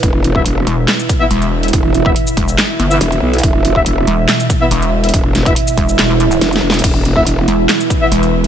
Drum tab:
CC |------------------------------------------------------------------------------------------------|------------------------------------------------------------------------------------------------|------------------------------------------------------------------------------------------------|------------------------------------------------------------------------------------------------|
HH |x-----------x-----------x-----------x-----------x-----------x-----------x-----x-----------x--x--|x-----------x-----------x-----------x-----------x-----------x-----------x-----x-----------x--x--|x-----------x-----------x-----------x-----------x-----------x-----------x-----x-----------x--x--|x-----------x-----x-----x-----------x-----------x-----------x-----------x-----x-----------x--x--|
SH |------------------------------------------------------x-----x-----------------------------------|------------------------------x-----------x-----------------------x-----------------------------|------------------------------------------------------x-----x-----------------------------------|------------------------------x-----------x-----------------------x-----------------------------|
CP |------------------------------------------------x-----------------------------------------------|------------------------------------------------x-----------------------------------------------|------------------------------------------------x-----------------------------------------------|------------------------------------------------x-----------------------------------------------|
SD |------------------------------------------------o-----------------------------------------------|------------------------------------------------o-----------------------------------------------|------------------------------------------------o-----------------------------------------------|------------o-----------------------------------o-----------------------o-------o-------o-------|
BD |o-----------------o-----------------------------------------o-----------------------------------|o-----------------o-----------------o-----------------------------------------------------------|o-----------------o-----------------------------------------o-----------------------------------|o-----------------o-----------------o-----------------------------------------------------------|

CC |x-----------------------------------------------------------------------------------------------|
HH |x-----------x-----------x-----------x-----------x-----------x-----------x-----x-----------------|
SH |------------------------------------------------------x-----x-----------------------------------|
CP |------------------------------------------------x-----------------------------------------------|
SD |------------------------------------------------o-----------------------------------------------|
BD |o-----------------o-----------------------------------------o-----------------------------------|